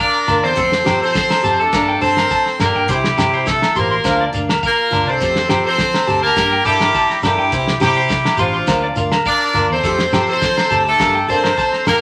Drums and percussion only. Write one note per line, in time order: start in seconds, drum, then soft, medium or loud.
0.28 low agogo medium
0.28 shekere loud
0.57 kick loud
0.57 shekere medium
0.72 snare medium
0.86 snare medium
0.86 low agogo medium
0.86 shekere medium
1.02 shekere soft
1.15 kick loud
1.15 snare medium
1.15 shekere medium
1.30 snare medium
1.30 low agogo medium
1.44 shekere loud
1.59 shekere soft
1.73 kick loud
1.73 snare medium
1.73 low agogo medium
1.73 shekere medium
2.02 shekere medium
2.17 snare medium
2.17 low agogo medium
2.31 kick medium
2.31 shekere medium
2.46 snare soft
2.60 snare medium
2.60 low agogo medium
2.60 shekere loud
2.89 kick medium
2.89 shekere medium
3.04 snare medium
3.18 snare medium
3.18 low agogo medium
3.18 shekere loud
3.33 shekere soft
3.46 kick loud
3.46 snare medium
3.46 shekere medium
3.62 snare medium
3.62 low agogo medium
3.76 shekere loud
3.91 shekere soft
4.04 kick loud
4.04 snare medium
4.04 low agogo medium
4.04 shekere medium
4.34 shekere medium
4.49 snare medium
4.49 low agogo medium
4.49 shekere soft
4.63 kick medium
4.63 shekere medium
4.93 low agogo medium
4.93 shekere loud
5.08 shekere soft
5.21 kick medium
5.21 shekere medium
5.36 snare medium
5.49 snare medium
5.49 low agogo medium
5.49 shekere medium
5.66 shekere soft
5.78 kick loud
5.78 snare medium
5.78 shekere medium
5.94 snare medium
5.94 low agogo medium
6.08 shekere medium
6.24 shekere soft
6.37 kick loud
6.37 snare medium
6.37 low agogo medium
6.37 shekere medium
6.65 shekere medium
6.80 snare medium
6.80 low agogo medium
6.95 kick medium
6.95 shekere medium
7.10 snare soft
7.23 snare medium
7.23 low agogo medium
7.23 shekere loud
7.52 kick medium
7.52 shekere medium
7.68 snare medium
7.81 snare medium
7.81 low agogo medium
7.81 shekere loud
7.95 shekere soft
8.08 kick medium
8.08 snare medium
8.08 shekere medium
8.25 snare medium
8.25 low agogo medium
8.37 shekere medium
8.53 shekere soft
8.67 kick medium
8.67 snare medium
8.67 low agogo medium
8.67 shekere medium
8.96 shekere loud
9.12 snare medium
9.12 low agogo medium
9.25 kick loud
9.25 shekere medium
9.54 low agogo medium
9.54 shekere loud
9.84 kick loud
9.84 shekere medium
9.99 snare medium
10.13 snare medium
10.13 low agogo medium
10.13 shekere loud
10.27 shekere soft
10.41 kick loud
10.41 snare medium
10.41 shekere medium
10.57 snare medium
10.57 low agogo medium
10.71 shekere medium
10.86 shekere soft
11.00 kick loud
11.00 snare medium
11.00 low agogo medium
11.00 shekere medium
11.29 shekere medium
11.43 snare medium
11.43 low agogo medium
11.58 kick medium
11.58 shekere medium
11.73 snare soft
11.87 snare medium
11.87 low agogo medium
11.87 shekere loud